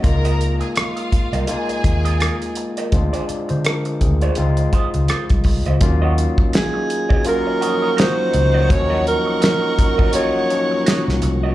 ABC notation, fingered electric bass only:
X:1
M:4/4
L:1/16
Q:"Swing 16ths" 1/4=83
K:Ebdor
V:1 name="Fingered electric bass" clef=bass
D,,4 z3 C,, z2 E,,3 z3 | =D,, z2 =D,3 D,,2 _D,,2 z D,, z C,, C,, D,, | E,,3 z8 z3 D,,2 | E,,3 z8 z2 C,, C,,2 |]